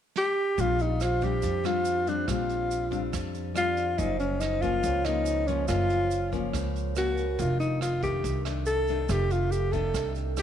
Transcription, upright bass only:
0.58 1.39 A#1 loud
1.43 2.25 F2 medium
2.28 3.09 A#1 loud
3.13 3.95 F2 medium
3.98 4.80 F#1 loud
4.84 5.65 C#2 medium
5.69 6.50 F#1 loud
6.54 7.35 C#2 medium
7.39 8.20 F1 loud
8.24 9.05 C2 medium
9.09 9.90 F1 loud
9.94 10.42 C2 medium

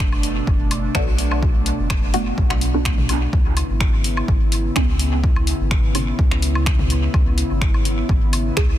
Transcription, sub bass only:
0.00 0.41 F#1 medium
0.47 0.89 F#1 medium
0.95 1.72 B1 medium
1.79 2.32 F#1 medium
2.38 3.27 B1 loud
3.33 3.63 C#2 loud
3.70 4.22 G#1 medium
4.28 4.70 G#1 medium
4.76 5.53 C#2 medium
5.60 6.13 G#1 medium
6.19 7.08 C#2 medium
7.14 7.44 C#2 loud
7.50 8.03 G#1 medium
8.09 8.51 G#1 medium
8.57 8.78 C#2 medium

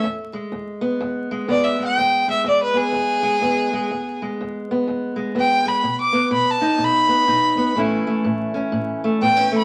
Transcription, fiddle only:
1.51 1.66 D5 medium
1.64 1.81 E5 medium
1.85 2.30 G5 medium
2.31 2.46 E5 medium
2.48 2.62 D5 medium
2.63 2.78 B4 medium
2.77 4.18 G#4 loud
5.39 5.70 G5 medium
5.68 5.99 B5 medium
6.01 6.32 D6 medium
6.33 6.52 B5 medium
6.51 6.86 A5 medium
6.85 7.76 B5 loud
9.22 9.53 G5 medium
9.58 9.64 B5 medium

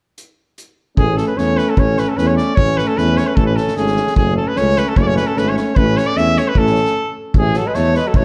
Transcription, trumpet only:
0.98 1.18 G#4 medium
1.17 1.27 A4 medium
1.27 1.39 B4 medium
1.37 1.59 C#5 medium
1.57 1.70 B4 medium
1.69 1.80 A4 medium
1.79 2.00 C#5 medium
1.99 2.10 B4 medium
2.09 2.18 A4 medium
2.17 2.29 B4 medium
2.27 2.36 C#5 medium
2.37 2.57 D5 medium
2.55 2.79 C#5 loud
2.77 2.89 B4 medium
2.87 2.99 A4 medium
2.97 3.18 B4 medium
3.17 3.28 C#5 medium
3.27 3.37 B4 medium
3.36 3.46 A4 medium
3.46 3.57 B4 medium
3.56 3.76 A4 medium
3.77 4.14 G#4 medium
4.16 4.35 G#4 medium
4.37 4.49 A4 medium
4.48 4.59 B4 medium
4.57 4.79 C#5 medium
4.78 4.90 B4 medium
4.88 4.98 A4 medium
4.97 5.04 C#5 medium
5.02 5.08 D5 medium
5.07 5.16 C#5 medium
5.16 5.28 B4 medium
5.27 5.39 A4 medium
5.38 5.50 B4 medium
5.49 5.57 C#5 medium
5.57 5.77 C#5 medium
5.76 5.99 B4 medium
5.97 6.08 C#5 medium
6.07 6.19 D5 medium
6.17 6.39 E5 medium
6.38 6.50 C#5 medium
6.48 6.59 B4 medium
6.58 7.17 A4 medium
7.37 7.58 G#4 medium
7.57 7.69 A4 medium
7.67 7.76 B4 medium
7.75 7.95 C#5 medium
7.96 8.09 B4 medium
8.07 8.17 A4 medium
8.16 8.25 C#5 medium

